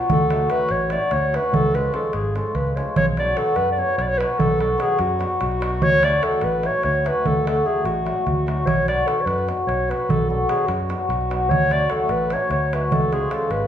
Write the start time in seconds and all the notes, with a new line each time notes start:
Already playing: F#3 F4
0.00 darbuka tek
0.10 D2 A4, darbuka dum
0.30 F#3 A3 D4 F#4, darbuka tek
0.50 F#3 A3 D4 F#4 B4, darbuka tek
0.69 A1 C#5, darbuka tek
0.80 darbuka tek
0.90 F#3 A3 D4 F#4 D5, darbuka tek
1.02 darbuka tek
1.11 D2 C#5, darbuka tek
1.23 darbuka tek
1.33 F#3 A3 D4 F#4 B4, darbuka tek
1.44 darbuka tek
1.53 C#2 A4, darbuka dum
1.64 darbuka tek
1.74 F3 G#3 C#4 F4 B4, darbuka tek
1.85 darbuka tek
1.92 F3 G#3 C#4 F4 A4, darbuka tek
2.04 darbuka tek
2.13 G#1 G#4, darbuka tek
2.24 darbuka tek
2.35 F3 G#3 C#4 F4 A4, darbuka tek
2.46 darbuka tek
2.55 C#2 B4, darbuka tek, darbuka dum
2.67 darbuka tek
2.76 F3 G#3 C#4 F4 C#5, darbuka tek
2.87 darbuka tek
2.96 B1 C#5, darbuka dum
3.17 F#3 B3 D4 F#4 D5, darbuka tek
3.37 F#3 B3 D4 F#4 A4, darbuka tek
3.46 darbuka tek
3.56 F#2 B4, darbuka tek
3.67 darbuka tek
3.72 D5
3.76 F#3 B3 D4 F#4 C#5
3.98 B1 C#5, darbuka tek
4.02 D5
4.08 C#5, darbuka tek
4.18 F#3 B3 D4 F#4 B4, darbuka tek
4.31 darbuka tek
4.39 B1 A4, darbuka dum
4.58 F#3 B3 D4 F#4 A4, darbuka tek
4.78 F#3 B3 D4 F#4 G#4, darbuka tek
4.90 darbuka tek
4.99 F#2 F#4, darbuka tek
5.10 darbuka tek
5.19 F#3 B3 D4 F#4, darbuka tek
5.41 B1 F#4, darbuka tek
5.51 darbuka tek
5.60 F#3 B3 D4 F#4, darbuka tek
5.72 darbuka tek
5.82 D2 C#5, darbuka dum
6.03 F#3 A3 D4 F#4 D5, darbuka tek
6.21 F#3 A3 D4 F#4 A4, darbuka tek
6.33 darbuka tek
6.41 A1 B4, darbuka tek
6.53 darbuka tek
6.63 F#3 A3 D4 F#4 C#5, darbuka tek
6.83 D2 C#5, darbuka tek
6.95 darbuka tek
7.04 F#3 A3 D4 F#4 B4, darbuka tek
7.25 D2 A4, darbuka dum
7.36 darbuka tek
7.46 F#3 A3 D4 F#4 A4, darbuka tek
7.57 darbuka tek
7.66 F#3 A3 D4 F#4 G#4
7.84 A1 F#4, darbuka tek
7.96 darbuka tek
8.05 F#3 A3 D4 F#4, darbuka tek
8.17 darbuka tek
8.27 D2 F#4, darbuka tek, darbuka dum
8.46 F#3 A3 D4 F#4, darbuka tek
8.57 darbuka tek
8.66 B1 C#5, darbuka dum
8.87 F#3 B3 D4 F#4 D5, darbuka tek
9.06 F#3 B3 D4 F#4 A4, darbuka tek
9.18 C#5, darbuka tek
9.26 F#2 B4, darbuka tek
9.38 darbuka tek
9.47 F#3 B3 D4 F#4, darbuka tek
9.67 B1 C#5, darbuka tek
9.79 darbuka tek
9.88 F#3 B3 D4 F#4 B4, darbuka tek
10.01 darbuka tek
10.09 B1 A4, darbuka dum
10.28 F#3 B3 D4 F#4 A4
10.49 F#3 B3 D4 F#4 G#4, darbuka tek
10.59 darbuka tek
10.67 F#2 F#4, darbuka tek
10.79 darbuka tek
10.89 F#3 B3 D4 F#4, darbuka tek
11.08 B1 F#4, darbuka tek
11.21 darbuka tek
11.30 F#3 B3 D4 F#4, darbuka tek
11.41 darbuka tek
11.50 D2 C#5, darbuka dum
11.71 F#3 A3 D4 F#4 D5, darbuka tek
11.90 F#3 A3 D4 F#4 A4, darbuka tek
12.00 darbuka tek
12.09 A1 B4, darbuka tek
12.30 F#3 A3 D4 F#4 C#5, darbuka tek
12.50 D2 C#5, darbuka tek
12.62 darbuka tek
12.73 F#3 A3 D4 F#4 B4, darbuka tek
12.91 C#2 A4, darbuka dum
13.02 darbuka tek
13.11 F3 G#3 C#4 F4 G#4, darbuka tek
13.22 darbuka tek
13.31 F3 G#3 C#4 F4 A4, darbuka tek
13.41 darbuka tek
13.50 G#1 B4, darbuka tek
13.62 darbuka tek